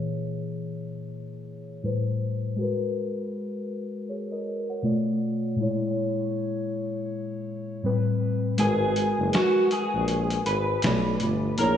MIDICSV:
0, 0, Header, 1, 5, 480
1, 0, Start_track
1, 0, Key_signature, 5, "minor"
1, 0, Tempo, 750000
1, 1651, Time_signature, 4, 2, 24, 8
1, 7533, End_track
2, 0, Start_track
2, 0, Title_t, "Clean electric guitar"
2, 0, Program_c, 0, 27
2, 5501, Note_on_c, 0, 68, 97
2, 5950, Note_off_c, 0, 68, 0
2, 5982, Note_on_c, 0, 66, 87
2, 6193, Note_off_c, 0, 66, 0
2, 6223, Note_on_c, 0, 68, 85
2, 6672, Note_off_c, 0, 68, 0
2, 6696, Note_on_c, 0, 71, 80
2, 7388, Note_off_c, 0, 71, 0
2, 7415, Note_on_c, 0, 70, 96
2, 7533, Note_off_c, 0, 70, 0
2, 7533, End_track
3, 0, Start_track
3, 0, Title_t, "Synth keys"
3, 0, Program_c, 1, 88
3, 0, Control_c, 1, 64, 127
3, 0, Note_on_c, 1, 46, 75
3, 0, Note_on_c, 1, 52, 64
3, 0, Note_on_c, 1, 68, 65
3, 0, Note_on_c, 1, 73, 76
3, 1138, Note_off_c, 1, 46, 0
3, 1145, Note_off_c, 1, 52, 0
3, 1152, Note_off_c, 1, 68, 0
3, 1170, Note_on_c, 1, 45, 70
3, 1176, Note_on_c, 1, 55, 58
3, 1179, Note_off_c, 1, 73, 0
3, 1180, Control_c, 1, 64, 0
3, 1183, Note_on_c, 1, 71, 62
3, 1191, Note_on_c, 1, 72, 70
3, 1279, Control_c, 1, 64, 127
3, 1638, Note_on_c, 1, 56, 73
3, 1650, Note_off_c, 1, 45, 0
3, 1653, Note_on_c, 1, 66, 64
3, 1654, Note_off_c, 1, 55, 0
3, 1657, Note_off_c, 1, 71, 0
3, 1660, Control_c, 1, 64, 0
3, 1661, Note_off_c, 1, 72, 0
3, 1666, Note_on_c, 1, 70, 68
3, 1679, Note_on_c, 1, 71, 79
3, 1779, Control_c, 1, 64, 127
3, 2599, Note_off_c, 1, 70, 0
3, 2606, Note_off_c, 1, 71, 0
3, 2618, Note_on_c, 1, 73, 51
3, 2623, Note_on_c, 1, 68, 42
3, 2751, Note_off_c, 1, 73, 0
3, 2754, Note_off_c, 1, 68, 0
3, 2763, Note_on_c, 1, 75, 71
3, 2767, Note_on_c, 1, 70, 59
3, 2987, Note_off_c, 1, 75, 0
3, 2989, Note_off_c, 1, 70, 0
3, 3004, Note_on_c, 1, 78, 58
3, 3007, Note_on_c, 1, 73, 52
3, 3059, Note_off_c, 1, 56, 0
3, 3066, Note_off_c, 1, 66, 0
3, 3086, Note_on_c, 1, 47, 67
3, 3094, Note_on_c, 1, 57, 64
3, 3100, Control_c, 1, 64, 0
3, 3100, Note_on_c, 1, 65, 60
3, 3108, Note_on_c, 1, 74, 76
3, 3214, Control_c, 1, 64, 127
3, 3227, Note_off_c, 1, 78, 0
3, 3229, Note_off_c, 1, 73, 0
3, 3557, Note_on_c, 1, 46, 71
3, 3569, Note_off_c, 1, 47, 0
3, 3570, Note_on_c, 1, 56, 64
3, 3573, Note_off_c, 1, 57, 0
3, 3575, Note_off_c, 1, 65, 0
3, 3579, Note_off_c, 1, 74, 0
3, 3580, Control_c, 1, 64, 0
3, 3585, Note_on_c, 1, 64, 66
3, 3599, Note_on_c, 1, 73, 82
3, 3684, Control_c, 1, 64, 127
3, 4979, Note_off_c, 1, 46, 0
3, 4985, Note_off_c, 1, 56, 0
3, 4993, Note_off_c, 1, 64, 0
3, 4999, Note_off_c, 1, 73, 0
3, 5011, Note_on_c, 1, 45, 63
3, 5018, Control_c, 1, 64, 0
3, 5018, Note_on_c, 1, 55, 59
3, 5024, Note_on_c, 1, 60, 62
3, 5030, Note_on_c, 1, 71, 78
3, 5115, Control_c, 1, 64, 127
3, 5490, Note_on_c, 1, 56, 78
3, 5491, Note_off_c, 1, 45, 0
3, 5495, Note_off_c, 1, 55, 0
3, 5498, Note_off_c, 1, 60, 0
3, 5498, Note_on_c, 1, 66, 69
3, 5500, Control_c, 1, 64, 0
3, 5501, Note_off_c, 1, 71, 0
3, 5506, Note_on_c, 1, 70, 71
3, 5512, Note_on_c, 1, 71, 80
3, 5607, Control_c, 1, 64, 127
3, 6151, Note_off_c, 1, 56, 0
3, 6155, Note_off_c, 1, 66, 0
3, 6159, Note_off_c, 1, 70, 0
3, 6162, Note_off_c, 1, 71, 0
3, 6932, Note_on_c, 1, 47, 73
3, 6937, Note_on_c, 1, 57, 65
3, 6940, Control_c, 1, 64, 0
3, 6944, Note_on_c, 1, 65, 67
3, 6952, Note_on_c, 1, 74, 81
3, 7052, Control_c, 1, 64, 127
3, 7108, Note_off_c, 1, 47, 0
3, 7111, Note_off_c, 1, 57, 0
3, 7114, Note_off_c, 1, 65, 0
3, 7118, Note_off_c, 1, 74, 0
3, 7170, Note_on_c, 1, 47, 67
3, 7178, Note_on_c, 1, 57, 62
3, 7185, Note_on_c, 1, 65, 63
3, 7191, Note_on_c, 1, 74, 73
3, 7348, Note_off_c, 1, 47, 0
3, 7351, Note_off_c, 1, 57, 0
3, 7355, Note_off_c, 1, 65, 0
3, 7358, Note_off_c, 1, 74, 0
3, 7411, Note_on_c, 1, 58, 78
3, 7418, Note_on_c, 1, 64, 67
3, 7420, Control_c, 1, 64, 0
3, 7425, Note_on_c, 1, 68, 71
3, 7431, Note_on_c, 1, 73, 82
3, 7520, Control_c, 1, 64, 127
3, 7533, Note_off_c, 1, 58, 0
3, 7533, Note_off_c, 1, 64, 0
3, 7533, Note_off_c, 1, 68, 0
3, 7533, Note_off_c, 1, 73, 0
3, 7533, End_track
4, 0, Start_track
4, 0, Title_t, "Tuba"
4, 0, Program_c, 2, 58
4, 5494, Note_on_c, 2, 32, 96
4, 5815, Note_off_c, 2, 32, 0
4, 5879, Note_on_c, 2, 30, 93
4, 5958, Note_off_c, 2, 30, 0
4, 6361, Note_on_c, 2, 34, 94
4, 6641, Note_off_c, 2, 34, 0
4, 6695, Note_on_c, 2, 32, 97
4, 6895, Note_off_c, 2, 32, 0
4, 6935, Note_on_c, 2, 35, 115
4, 7135, Note_off_c, 2, 35, 0
4, 7176, Note_on_c, 2, 31, 87
4, 7376, Note_off_c, 2, 31, 0
4, 7414, Note_on_c, 2, 34, 105
4, 7533, Note_off_c, 2, 34, 0
4, 7533, End_track
5, 0, Start_track
5, 0, Title_t, "Drums"
5, 5490, Note_on_c, 9, 42, 85
5, 5554, Note_off_c, 9, 42, 0
5, 5735, Note_on_c, 9, 42, 66
5, 5799, Note_off_c, 9, 42, 0
5, 5972, Note_on_c, 9, 42, 80
5, 5982, Note_on_c, 9, 38, 107
5, 6036, Note_off_c, 9, 42, 0
5, 6046, Note_off_c, 9, 38, 0
5, 6214, Note_on_c, 9, 42, 58
5, 6278, Note_off_c, 9, 42, 0
5, 6451, Note_on_c, 9, 42, 71
5, 6515, Note_off_c, 9, 42, 0
5, 6595, Note_on_c, 9, 42, 54
5, 6659, Note_off_c, 9, 42, 0
5, 6695, Note_on_c, 9, 42, 79
5, 6759, Note_off_c, 9, 42, 0
5, 6927, Note_on_c, 9, 42, 82
5, 6940, Note_on_c, 9, 38, 122
5, 6991, Note_off_c, 9, 42, 0
5, 7004, Note_off_c, 9, 38, 0
5, 7168, Note_on_c, 9, 42, 67
5, 7232, Note_off_c, 9, 42, 0
5, 7409, Note_on_c, 9, 42, 87
5, 7473, Note_off_c, 9, 42, 0
5, 7533, End_track
0, 0, End_of_file